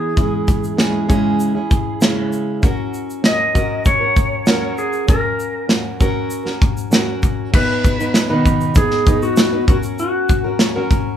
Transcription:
Already playing: steel-string acoustic guitar E3 B3 E4, electric slide guitar G#4
0.16 steel-string acoustic guitar G#3 C#4 E4 G#4, kick, shaker
0.48 kick, shaker
0.64 shaker
0.77 steel-string acoustic guitar G#3 C#4 E4 G#4, snare, shaker
1.08 steel-string acoustic guitar C#3 G#3 C#4 E4 G#4, kick, shaker
1.40 shaker
1.55 steel-string acoustic guitar C#4 E4 G#4
1.71 kick, shaker
2.01 steel-string acoustic guitar C#3 G#3 C#4 E4 G#4, snare, shaker
2.33 shaker
2.62 steel-string acoustic guitar F#3 C#4 F#4 A#4, kick, shaker
2.94 shaker
3.10 shaker
3.24 steel-string acoustic guitar F#3 C#4 F#4 A#4, electric slide guitar D#5, snare, shaker
3.54 steel-string acoustic guitar F#3 C#4 F#4 A#4, kick, shaker
3.85 electric slide guitar C#5, kick, shaker
4.01 steel-string acoustic guitar C#4 F#4 A#4
4.16 kick, shaker
4.46 steel-string acoustic guitar F#3 C#4 F#4 A#4, snare, shaker
4.78 electric slide guitar G#4, shaker
4.93 shaker
5.08 steel-string acoustic guitar F#3 C#4 F#4 A#4, electric slide guitar A#4, kick, shaker
5.40 shaker
5.69 steel-string acoustic guitar F#3 C#4 F#4 A#4, snare, shaker
6.00 steel-string acoustic guitar F#3 C#4 F#4 A#4, kick, shaker
6.30 shaker
6.45 steel-string acoustic guitar C#4 F#4 A#4, snare
6.62 kick, shaker
6.77 shaker
6.92 steel-string acoustic guitar F#3 C#4 F#4 A#4, snare, shaker
7.23 kick, shaker
7.53 steel-string acoustic guitar F#3 B3 D#4 B4, electric slide guitar B4, kick, crash
7.84 kick, shaker
7.99 steel-string acoustic guitar F#3 B3 D#4 B4, shaker
8.14 snare, shaker
8.30 steel-string acoustic guitar B2 D#3 F#3 B3 D#4 B4
8.46 kick, shaker
8.61 shaker
8.75 steel-string acoustic guitar F#3 B3 D#4 B4, electric slide guitar G#4, kick, shaker
8.91 snare
9.06 steel-string acoustic guitar F#3 B3 D#4 B4, kick, shaker
9.22 electric slide guitar F#4, shaker
9.36 snare, shaker
9.53 steel-string acoustic guitar F#3 B3 D#4 B4
9.68 steel-string acoustic guitar F#3 C#4 F#4 A#4, electric slide guitar F#4, kick, shaker
9.83 shaker
9.99 electric slide guitar F#4, shaker
10.29 kick, shaker
10.44 steel-string acoustic guitar C#4 F#4 A#4
10.59 snare, shaker
10.76 steel-string acoustic guitar F#3 C#4 F#4 A#4
10.91 kick, shaker

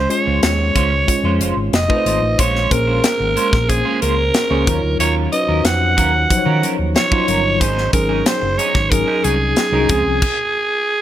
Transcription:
Already playing: tine electric piano G#3 C#4 F4 C5, alto saxophone C5
0.09 tine electric piano G#3 C#4 F4 G#4, alto saxophone C#5, muted clean electric guitar stroke, closed hi-hat
0.26 fingered electric bass C#2, clean electric guitar G#3 C#4 F4 C5
0.42 fingered electric bass D#2, alto saxophone C#5, muted clean electric guitar stroke, snare, closed hi-hat
0.58 muted clean electric guitar stroke
0.75 fingered electric bass C#2, clean electric guitar G#3 C#4 F4 C5, kick, closed hi-hat
0.92 muted clean electric guitar stroke
1.07 tine electric piano G#3 C#4 F4 C#5, muted clean electric guitar stroke, kick, closed hi-hat
1.24 fingered electric bass F2, clean electric guitar G#3 C#4 F4 C5
1.41 fingered electric bass F1, clean electric guitar G#3 C#4 F4 C5, closed hi-hat
1.57 fingered electric bass G#1, muted clean electric guitar stroke
1.73 fingered electric bass F1, alto saxophone D#5, muted clean electric guitar stroke, snare, closed hi-hat
1.88 tine electric piano A3 D#4 F4 B4, clean electric guitar C4 D#4 A4 D#5, kick
1.96 tine electric piano C5
2.06 fingered electric bass G#1, clean electric guitar C4 D#4 A4 C5, closed hi-hat
2.22 fingered electric bass A1
2.38 fingered electric bass A#1, clean electric guitar G#3 C#4 F4 C5, alto saxophone C#5, kick, closed hi-hat
2.55 snare
2.70 fingered electric bass A#1, tine electric piano A#3 C#4 G#4 C5, alto saxophone A#4, muted clean electric guitar stroke, kick, closed hi-hat
2.87 clean electric guitar G#3 C#4 F4 C5
3.04 muted clean electric guitar stroke, snare, closed hi-hat
3.20 fingered electric bass G#1, muted clean electric guitar stroke
3.36 clean electric guitar G#3 C#4 F4 C5, closed hi-hat
3.52 fingered electric bass A#1, muted clean electric guitar stroke, kick, snare
3.68 tine electric piano A#3 C#4 G#4 C5, alto saxophone G#4, muted clean electric guitar stroke, kick, closed hi-hat
3.85 clean electric guitar G#3 C#4 F4 C5
4.01 fingered electric bass C#2, clean electric guitar G#3 C#4 F4 C5, alto saxophone A#4, closed hi-hat
4.34 muted clean electric guitar stroke, snare, closed hi-hat
4.50 fingered electric bass C#2, clean electric guitar G#3 C#4 F4 C#5, tine electric piano A#3 C#4 G#4 C5
4.66 fingered electric bass D#2, tine electric piano F#3 D#4 F4 C5, clean electric guitar F#3 C#4 F4 A#4, kick, closed hi-hat
4.74 tine electric piano C#5
4.83 fingered electric bass D2, muted clean electric guitar stroke
4.99 fingered electric bass D#2, clean electric guitar F#3 C#4 F4 A#4, alto saxophone C#5, closed hi-hat
5.32 tine electric piano C#4 D#4 F#4 B4, alto saxophone D#5, muted clean electric guitar stroke, closed hi-hat
5.40 tine electric piano C5
5.48 fingered electric bass D#2, clean electric guitar F#3 C#4 F4 A#4
5.64 fingered electric bass F2, alto saxophone F#5, snare, closed hi-hat
5.81 muted clean electric guitar stroke
5.96 fingered electric bass D#2, clean electric guitar F#3 C#4 F4 A#4, kick, closed hi-hat
6.13 muted clean electric guitar stroke
6.30 tine electric piano F3 F#3 D#4 C5, muted clean electric guitar stroke, muted fingered electric bass stroke, kick, closed hi-hat
6.38 tine electric piano C#5
6.46 fingered electric bass D#3, clean electric guitar F#3 C#4 F4 A#4
6.62 clean electric guitar F#3 C#4 F4 A#4, closed hi-hat
6.78 fingered electric bass D#2, muted clean electric guitar stroke
6.95 alto saxophone C#5, muted clean electric guitar stroke, snare, closed hi-hat
7.11 tine electric piano F#3 D#4 F4 C#5, clean electric guitar F#3 C#4 F4 C5, kick
7.27 fingered electric bass G1, clean electric guitar F#3 C#4 F4 A#4, closed hi-hat
7.60 fingered electric bass G#1, clean electric guitar F#3 C#4 D#4 G#4, alto saxophone C5, kick, closed hi-hat
7.78 snare
7.93 fingered electric bass G#1, tine electric piano F#3 C#4 D#4 G#4, alto saxophone A#4, muted clean electric guitar stroke, kick, closed hi-hat
8.09 clean electric guitar F#3 C#4 D#4 G#4
8.26 alto saxophone C5, snare, closed hi-hat
8.42 fingered electric bass F#1, muted clean electric guitar stroke
8.58 clean electric guitar F#3 C#4 D#4 G#4, alto saxophone C#5, closed hi-hat
8.74 fingered electric bass G#1, muted clean electric guitar stroke, kick, snare
8.90 tine electric piano F#3 C#4 D#4 G#4, alto saxophone A#4, muted clean electric guitar stroke, kick, closed hi-hat
9.07 clean electric guitar F#3 C#4 D#4 G#4
9.23 fingered electric bass C2, clean electric guitar F#3 C#4 D#4 G#4, alto saxophone G#4, closed hi-hat
9.40 muted clean electric guitar stroke
9.56 muted clean electric guitar stroke, snare, closed hi-hat
9.72 fingered electric bass C2, tine electric piano F#3 C#4 D#4 G#4, clean electric guitar F#3 C#4 D#4 A#4
9.89 fingered electric bass C#2, tine electric piano F3 C4 C#4 G#4, clean electric guitar G#3 C4 F4 G#4, kick, closed hi-hat
10.06 fingered electric bass C2
10.22 kick, crash

